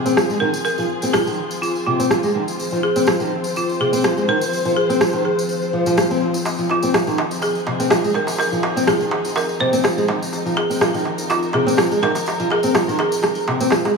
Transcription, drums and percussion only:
0.06 tambourine medium
0.17 cross-stick medium
0.17 tambourine medium
0.30 tambourine soft
0.54 tambourine medium
0.65 tambourine medium
0.78 tambourine soft
1.02 tambourine medium
1.14 cross-stick loud
1.14 tambourine medium
1.27 tambourine soft
1.51 tambourine medium
1.63 tambourine medium
1.75 tambourine soft
2.00 tambourine medium
2.11 cross-stick medium
2.11 tambourine medium
2.23 tambourine soft
2.48 tambourine medium
2.59 tambourine medium
2.71 tambourine soft
2.96 tambourine medium
3.07 cross-stick medium
3.07 tambourine medium
3.20 tambourine soft
3.44 tambourine medium
3.56 tambourine medium
3.69 tambourine soft
3.93 tambourine medium
4.04 cross-stick loud
4.04 tambourine medium
4.18 tambourine soft
4.41 tambourine medium
4.53 tambourine medium
4.65 tambourine soft
4.90 tambourine medium
5.01 cross-stick loud
5.01 tambourine medium
5.13 tambourine soft
5.39 tambourine medium
5.49 tambourine medium
5.62 tambourine soft
5.86 tambourine medium
5.97 cross-stick medium
5.97 tambourine medium
6.11 tambourine soft
6.34 tambourine medium
6.45 tambourine medium
6.45 darbuka tek medium
6.59 tambourine soft
6.69 darbuka ka medium
6.69 darbuka tek medium
6.82 tambourine medium
6.94 cross-stick loud
6.94 tambourine medium
6.94 darbuka tek medium
7.07 tambourine soft
7.18 darbuka tek medium
7.31 tambourine medium
7.42 tambourine medium
7.42 darbuka tek medium
7.55 tambourine soft
7.67 darbuka tek medium
7.80 tambourine medium
7.90 cross-stick medium
7.90 tambourine medium
7.90 darbuka tek medium
8.04 tambourine soft
8.14 darbuka tek medium
8.27 tambourine medium
8.27 darbuka ka medium
8.38 tambourine medium
8.38 darbuka tek medium
8.53 tambourine soft
8.63 darbuka tek medium
8.77 tambourine medium
8.87 cross-stick medium
8.87 tambourine medium
8.87 darbuka tek medium
9.01 tambourine soft
9.11 darbuka tek medium
9.25 tambourine medium
9.36 tambourine medium
9.36 darbuka tek medium
9.49 tambourine soft
9.60 darbuka tek medium
9.73 tambourine medium
9.84 cross-stick medium
9.84 tambourine medium
9.84 darbuka tek medium
9.98 tambourine soft
10.08 darbuka tek medium
10.22 tambourine medium
10.32 tambourine medium
10.32 darbuka tek soft
10.46 tambourine soft
10.57 darbuka ka medium
10.57 darbuka tek medium
10.71 tambourine medium
10.81 cross-stick medium
10.81 tambourine medium
10.81 darbuka tek medium
10.94 tambourine soft
11.05 darbuka tek medium
11.18 tambourine medium
11.30 tambourine medium
11.30 darbuka tek medium
11.43 tambourine soft
11.53 darbuka tek medium
11.68 tambourine medium
11.77 cross-stick medium
11.77 tambourine medium
11.77 darbuka tek medium
11.92 tambourine soft
12.03 darbuka tek medium
12.15 tambourine medium
12.15 darbuka ka medium
12.26 tambourine medium
12.26 darbuka tek medium
12.40 tambourine soft
12.50 darbuka ka medium
12.50 darbuka tek medium
12.63 tambourine medium
12.75 cross-stick medium
12.75 tambourine medium
12.75 darbuka tek medium
12.89 tambourine soft
12.99 darbuka tek medium
13.12 tambourine medium
13.23 cross-stick medium
13.23 tambourine soft
13.23 darbuka tek medium
13.35 tambourine soft
13.48 darbuka tek medium
13.60 tambourine medium
13.70 cross-stick medium
13.70 tambourine medium
13.70 darbuka tek medium
13.85 tambourine soft
13.85 darbuka ka medium

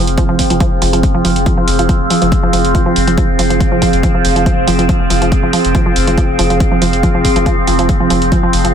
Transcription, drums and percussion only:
0.07 closed hi-hat medium
0.18 kick loud
0.18 closed hi-hat medium
0.39 kick medium
0.39 open hi-hat loud
0.50 closed hi-hat medium
0.60 kick loud
0.60 closed hi-hat medium
0.82 open hi-hat loud
0.93 closed hi-hat medium
1.03 kick loud
1.03 closed hi-hat medium
1.25 open hi-hat loud
1.36 closed hi-hat medium
1.46 kick loud
1.46 closed hi-hat medium
1.68 open hi-hat loud
1.79 closed hi-hat medium
1.89 kick loud
1.89 closed hi-hat medium
2.10 open hi-hat loud
2.22 closed hi-hat medium
2.32 kick loud
2.32 closed hi-hat medium
2.53 open hi-hat loud
2.65 closed hi-hat medium
2.75 kick loud
2.75 closed hi-hat medium
2.96 open hi-hat loud
3.07 closed hi-hat medium
3.18 kick loud
3.18 closed hi-hat medium
3.39 open hi-hat loud
3.50 closed hi-hat medium
3.60 kick loud
3.60 closed hi-hat medium
3.82 kick medium
3.82 open hi-hat loud
3.93 closed hi-hat medium
4.03 kick loud
4.03 closed hi-hat medium
4.25 open hi-hat loud
4.36 closed hi-hat medium
4.46 kick loud
4.46 closed hi-hat medium
4.68 open hi-hat loud
4.79 closed hi-hat medium
4.89 kick loud
4.89 closed hi-hat medium
5.10 open hi-hat loud
5.22 closed hi-hat medium
5.32 kick loud
5.32 closed hi-hat medium
5.53 open hi-hat loud
5.65 closed hi-hat medium
5.75 kick loud
5.75 closed hi-hat medium
5.96 open hi-hat loud
6.07 closed hi-hat medium
6.18 kick loud
6.18 closed hi-hat medium
6.39 open hi-hat loud
6.50 closed hi-hat medium
6.60 kick loud
6.60 closed hi-hat medium
6.82 open hi-hat loud
6.93 closed hi-hat medium
7.03 kick loud
7.03 closed hi-hat medium
7.25 kick medium
7.25 open hi-hat loud
7.36 closed hi-hat medium
7.46 kick loud
7.46 closed hi-hat medium
7.67 open hi-hat loud
7.79 closed hi-hat medium
7.89 kick loud
7.89 closed hi-hat medium
8.10 open hi-hat loud
8.22 closed hi-hat medium
8.32 kick loud
8.32 closed hi-hat medium
8.53 open hi-hat loud
8.65 closed hi-hat medium

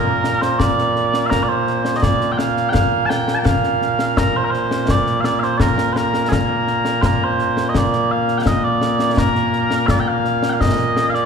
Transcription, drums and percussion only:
0.24 snare medium
0.42 snare medium
0.60 concert bass drum soft
0.60 snare medium
0.78 snare soft
0.96 snare soft
1.14 snare medium
1.31 concert bass drum soft
1.31 snare medium
1.67 snare soft
1.85 snare medium
2.03 concert bass drum medium
2.03 snare medium
2.21 snare soft
2.39 snare medium
2.57 snare soft
2.74 concert bass drum medium
2.74 snare medium
3.10 snare medium
3.28 snare medium
3.45 concert bass drum medium
3.45 snare medium
3.64 snare soft
3.82 snare soft
3.99 snare medium
4.17 concert bass drum medium
4.17 snare medium
4.54 snare soft
4.71 snare medium
4.88 concert bass drum medium
4.88 snare loud
5.06 snare soft
5.24 snare medium
5.43 snare soft
5.60 concert bass drum medium
5.60 snare medium
5.78 snare medium
5.96 snare medium
6.14 snare medium
6.32 concert bass drum medium
6.32 snare loud
6.67 snare soft
6.85 snare medium
7.02 concert bass drum medium
7.02 snare medium
7.39 snare soft
7.57 snare medium
7.75 concert bass drum medium
7.75 snare medium
7.93 snare soft
8.28 snare soft
8.46 concert bass drum medium
8.46 snare medium
8.81 snare medium
8.99 snare medium
9.17 concert bass drum medium
9.17 snare medium
9.35 snare soft
9.53 snare soft
9.70 snare medium
9.88 concert bass drum medium
9.88 snare medium
10.25 snare soft
10.43 snare medium
10.61 concert bass drum medium
10.61 snare medium
10.79 snare soft
10.97 snare medium
11.14 snare soft

